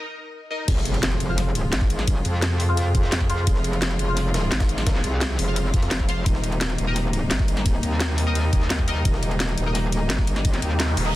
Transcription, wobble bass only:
0.68 1.19 F1 loud
1.20 1.71 F1 loud
1.73 2.24 G#1 medium
2.25 3.11 F2 loud
3.12 3.46 F2 loud
3.47 3.98 F1 loud
3.99 4.50 F1 loud
4.52 5.03 G#1 medium
5.04 5.37 C2 loud
5.39 5.72 F1 loud
5.74 5.90 F2 loud
5.91 6.25 F1 loud
6.26 6.77 D#1 loud
6.79 7.29 D#1 loud
7.31 7.82 G1 medium
7.83 8.69 D#2 loud
8.70 9.04 D#2 loud
9.05 9.56 D#1 loud
9.58 10.09 D#1 loud
10.10 10.61 G1 loud
10.62 10.96 D#2 loud
10.97 11.13 D#1 loud

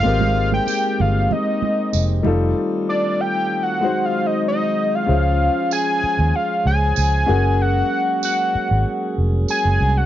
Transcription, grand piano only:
0.03 2.20 G#3 medium
0.03 2.21 C4 medium
0.03 2.21 G4 medium
0.07 2.22 A#4 medium
2.23 3.78 G3 medium
2.23 3.79 D#4 medium
2.23 3.79 F4 medium
2.23 3.80 A4 medium
3.81 5.05 G#3 medium
3.81 5.05 D#4 medium
3.81 5.06 F#4 medium
3.81 5.07 C5 medium
5.06 7.23 C#4 medium
5.06 7.24 F4 medium
5.06 7.24 G#4 medium
5.06 7.25 C5 medium
5.06 5.15 E5 medium
5.17 7.28 F5 medium
7.26 9.75 C#4 medium
7.26 9.76 F#4 medium
7.26 9.76 G#4 medium
7.26 9.76 A#4 medium
7.26 9.77 F#5 medium

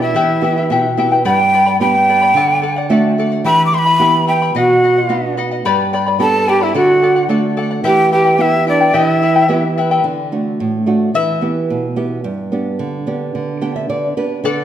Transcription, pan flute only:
0.02 0.94 E4 medium
4.56 5.34 F#4 medium
6.21 6.50 A4 medium
6.49 6.65 G4 medium
6.63 6.75 E4 medium
6.76 7.27 F#4 medium
7.85 8.11 G4 medium
8.13 8.43 G4 medium
8.42 8.67 E4 medium
8.68 8.98 D4 medium
8.96 9.78 E4 medium

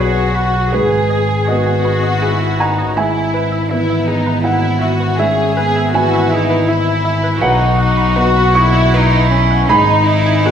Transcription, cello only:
0.00 0.36 G#4 medium
0.34 0.72 F#4 soft
0.72 2.19 G#4 medium
2.22 2.62 E4 medium
2.61 2.99 D#4 soft
2.97 3.72 E4 soft
3.71 5.20 B3 medium
5.20 5.60 C#4 medium
5.58 5.97 B3 medium
5.95 6.35 E4 medium
6.33 6.69 D#4 medium
6.68 7.42 E4 medium
7.42 8.95 F#4 medium
8.94 9.70 E4 medium
9.69 10.51 D#4 medium

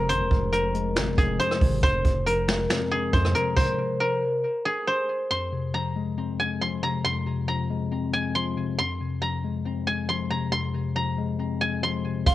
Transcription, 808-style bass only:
0.00 0.11 F1 loud
0.09 0.22 G#1 loud
0.21 0.30 F1 loud
0.31 0.98 F1 loud
0.96 1.09 G#1 loud
1.08 1.17 F1 loud
1.18 1.39 F1 loud
1.61 1.82 G#1 loud
1.83 2.04 F1 loud
2.05 2.67 F1 loud
3.13 3.34 F2 loud
12.26 12.35 F1 loud

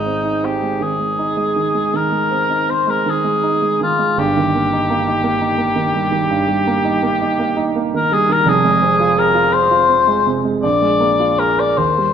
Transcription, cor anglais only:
0.00 0.46 D#4 medium
0.45 0.84 G4 medium
0.83 1.97 G#4 medium
1.96 2.72 A#4 medium
2.70 2.92 C5 medium
2.90 3.11 A#4 medium
3.09 3.82 G#4 medium
3.83 4.20 F4 medium
4.19 7.79 G4 medium
7.96 8.14 A#4 medium
8.13 8.34 G#4 loud
8.32 8.50 A#4 medium
8.48 9.20 G#4 medium
9.19 9.55 A#4 medium
9.53 10.36 C5 loud
10.62 11.41 D5 medium
11.39 11.61 A#4 medium
11.60 11.79 D5 medium
11.77 12.13 C5 medium

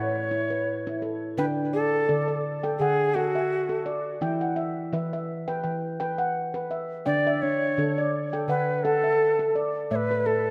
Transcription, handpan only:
0.00 1.33 A2 medium
0.00 0.14 E4 medium
0.00 0.50 C#5 medium
0.00 0.31 F#5 medium
0.31 0.67 E4 medium
0.50 1.02 B4 medium
0.87 1.22 E4 medium
1.02 1.57 A4 medium
1.38 2.05 D3 medium
1.38 1.74 D4 medium
1.38 1.93 G5 medium
1.73 2.08 D5 medium
2.09 2.76 D3 medium
2.09 2.45 A4 medium
2.09 2.27 D5 medium
2.28 2.80 D5 medium
2.63 3.00 A4 medium
2.63 3.16 G5 medium
2.80 4.18 D3 medium
2.80 3.15 F#5 medium
3.16 3.51 A4 medium
3.16 3.71 F#5 medium
3.35 3.87 E5 medium
3.69 4.06 A4 medium
3.86 4.41 D5 medium
4.21 4.89 E3 medium
4.21 4.58 E4 medium
4.21 4.77 G5 medium
4.41 4.93 F#5 medium
4.56 4.92 E5 medium
4.93 5.60 E3 medium
4.93 5.29 B4 medium
4.93 5.12 E5 medium
5.13 5.65 E5 medium
5.48 5.84 B4 medium
5.48 5.62 G5 medium
5.64 7.03 E3 medium
5.64 5.99 G5 medium
6.00 6.36 B4 medium
6.00 6.55 G5 medium
6.18 6.71 F#5 medium
6.54 6.90 B4 medium
6.71 7.26 E5 medium
7.06 7.74 D3 medium
7.06 7.42 D4 medium
7.06 7.61 G5 medium
7.27 7.78 E5 medium
7.43 7.77 D4 medium
7.78 8.45 D3 medium
7.78 8.33 D4 medium
7.78 8.14 A4 medium
7.98 8.49 D5 medium
8.33 8.69 A4 medium
8.33 8.84 G5 medium
8.48 9.86 D3 medium
8.48 8.84 F#5 medium
8.85 9.20 A4 medium
8.85 9.39 F#5 medium
9.04 9.55 E5 medium
9.39 9.75 A4 medium
9.55 10.10 D5 medium
9.91 10.51 A2 medium
9.91 10.26 A3 medium
9.91 10.46 E5 medium
10.11 10.51 B4 medium
10.26 10.51 A4 medium

